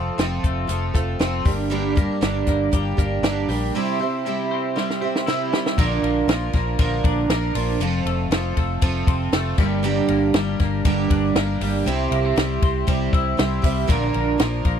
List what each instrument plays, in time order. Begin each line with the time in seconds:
Already playing: clean electric guitar F2 A3 C4, twelve-string acoustic guitar C4 F4 A4
0.18 fingered electric bass F1, twelve-string acoustic guitar F3 C4 F4 A4, snare, closed hi-hat
0.43 fingered electric bass F1, clean electric guitar A3, kick, closed hi-hat
0.67 fingered electric bass F1, twelve-string acoustic guitar F3 C4 F4 A4, closed hi-hat
0.94 fingered electric bass F1, clean electric guitar A3, twelve-string acoustic guitar C4 F4 A4, kick, closed hi-hat
1.19 fingered electric bass F1, twelve-string acoustic guitar F3 C4 F4 A4, snare, closed hi-hat
1.45 fingered electric bass G1, clean electric guitar G2, twelve-string acoustic guitar G3 A#3 D4 G4, kick, open hi-hat
1.70 twelve-string acoustic guitar G2 D3 G3 A#3 D4 G4, closed hi-hat
1.95 twelve-string acoustic guitar G3 A#3 D4 G4, kick, closed hi-hat
2.21 fingered electric bass G1, twelve-string acoustic guitar G2 D3 G3 A#3 D4 G4, snare, closed hi-hat
2.47 fingered electric bass G1, clean electric guitar A#3, kick, snare, closed hi-hat
2.72 fingered electric bass G1, twelve-string acoustic guitar G3 A#3 D4 G4, kick, closed hi-hat
2.97 fingered electric bass G1, twelve-string acoustic guitar G3 A#3 D4 G4, kick, closed hi-hat
3.23 fingered electric bass G1, twelve-string acoustic guitar G2 D3 G3 A#3 D4 G4, snare, closed hi-hat
3.49 fingered electric bass A#1, twelve-string acoustic guitar G3 A#3 D4 G4, open hi-hat
3.75 twelve-string acoustic guitar C3 G3 C4 E4 G4
3.99 twelve-string acoustic guitar C4 E4 G4
4.26 twelve-string acoustic guitar C3 G3 C4 E4 G4
4.51 clean electric guitar C4
4.76 twelve-string acoustic guitar G3 C4 E4 G4, snare
4.90 snare
5.02 twelve-string acoustic guitar C4 E4 G4
5.16 snare
5.27 twelve-string acoustic guitar C3 G3 C4 E4 G4, snare
5.52 clean electric guitar G3, twelve-string acoustic guitar C4 E4 G4, snare
5.66 snare
5.78 fingered electric bass A#1, twelve-string acoustic guitar A#2 D3 F3 A#3 D4 A#4, kick, crash
6.03 fingered electric bass A#1, clean electric guitar A#3, ride
6.28 fingered electric bass A#1, twelve-string acoustic guitar F3 A#3 D4 A#4, snare, ride
6.53 fingered electric bass A#1, twelve-string acoustic guitar F3 A#3 D4 A#4, kick, snare, ride
6.79 fingered electric bass A#1, twelve-string acoustic guitar A#2 D3 F3 A#3 D4 A#4, kick, ride
7.04 fingered electric bass A#1, clean electric guitar D4, kick, ride
7.29 fingered electric bass A#1, twelve-string acoustic guitar F3 A#3 D4 A#4, snare, ride
7.55 fingered electric bass A#1, twelve-string acoustic guitar F3 A#3 D4 A#4, open hi-hat, ride
7.80 fingered electric bass F1, clean electric guitar F2, twelve-string acoustic guitar F3 C4 F4 A4, hi-hat pedal, ride
8.05 fingered electric bass F1, clean electric guitar A3, ride
8.30 fingered electric bass F1, twelve-string acoustic guitar F3 C4 F4, snare, ride
8.34 twelve-string acoustic guitar A4
8.57 fingered electric bass F1, clean electric guitar A3, kick, ride
8.82 fingered electric bass F1, twelve-string acoustic guitar F3 C4 F4 A4, kick, ride
9.07 fingered electric bass F1, clean electric guitar C4, kick, ride
9.32 fingered electric bass F1, twelve-string acoustic guitar F3 C4 F4 A4, clean electric guitar A3, snare, ride
9.58 fingered electric bass G1, clean electric guitar G2, twelve-string acoustic guitar G3 A#3 D4 G4, kick, crash
9.83 twelve-string acoustic guitar G2 D3 G3 A#3 D4 G4, hi-hat pedal, ride
10.08 fingered electric bass G1, clean electric guitar A#3, ride
10.34 fingered electric bass G1, twelve-string acoustic guitar G3 A#3 D4 G4, snare, ride
10.59 fingered electric bass G1, clean electric guitar A#3, kick, snare, ride
10.85 fingered electric bass G1, twelve-string acoustic guitar G2 D3 G3 A#3 D4 G4, kick, ride
11.10 fingered electric bass G1, clean electric guitar D4, kick, ride
11.35 fingered electric bass G1, twelve-string acoustic guitar G3 A#3 D4 G4, snare, ride
11.60 fingered electric bass G1, twelve-string acoustic guitar A#3 D4 G4, open hi-hat, ride
11.64 twelve-string acoustic guitar G3
11.86 fingered electric bass C2, twelve-string acoustic guitar C3 G3 C4 E4 G4, hi-hat pedal, ride
12.11 fingered electric bass C2, clean electric guitar A#3, ride
12.25 clean electric guitar C4
12.36 fingered electric bass C2, twelve-string acoustic guitar G3 C4 E4 G4, snare, ride
12.62 fingered electric bass C2, clean electric guitar C4, kick, ride
12.87 fingered electric bass C2, twelve-string acoustic guitar C3 G3 C4 E4 G4, kick, ride
13.13 fingered electric bass C2, clean electric guitar E4, kick, ride
13.37 fingered electric bass C2, twelve-string acoustic guitar G3 C4 E4 G4, snare, ride
13.62 fingered electric bass C2, clean electric guitar G3, twelve-string acoustic guitar C4 E4 G4, kick, open hi-hat, ride
13.87 fingered electric bass A#1, twelve-string acoustic guitar A#2 D3 F3 A#3 D4 A#4, kick, hi-hat pedal, ride
14.14 fingered electric bass A#1, clean electric guitar A#3, ride
14.38 fingered electric bass A#1, twelve-string acoustic guitar F3 A#3 D4 A#4, snare, ride
14.65 fingered electric bass A#1, clean electric guitar A#3, kick, ride